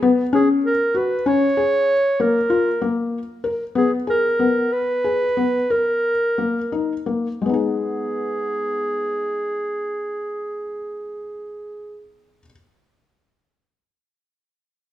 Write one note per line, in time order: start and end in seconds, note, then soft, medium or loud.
0.02 0.20 B3 medium
0.33 0.68 C#4 medium
0.33 0.48 G#4 medium
0.65 0.99 A#4 medium
0.95 1.12 F#4 medium
0.95 1.28 B4 medium
1.26 1.44 C#4 medium
1.26 2.22 C#5 medium
1.57 1.93 G#4 medium
2.20 2.37 A#3 medium
2.20 3.14 A#4 medium
2.50 2.68 F4 medium
2.82 3.17 A#3 medium
3.44 3.62 A#4 medium
3.75 3.94 B3 medium
3.75 3.91 G#4 medium
4.07 4.26 G#4 medium
4.07 4.74 A#4 medium
4.39 4.77 B3 medium
4.73 5.72 B4 medium
5.04 5.23 G#4 medium
5.37 5.56 B3 medium
5.70 6.09 A#4 medium
5.70 7.07 A#4 medium
6.38 6.57 A#3 soft
6.72 6.92 D#4 medium
7.06 7.26 A#3 soft
7.42 12.37 G#3 soft
7.42 12.07 G#4 medium
7.46 12.41 B3 soft
7.46 12.45 D#4 soft
7.54 12.49 G#4 soft